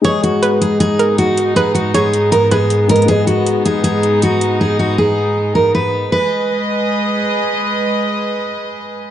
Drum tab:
HH |x--x--x--x--x--x--x--x--|x--x--x--x--x--x--x--xxx|x--x--x--x--x--x--x--x--|------------------------|

HH |------------------------|------------------------|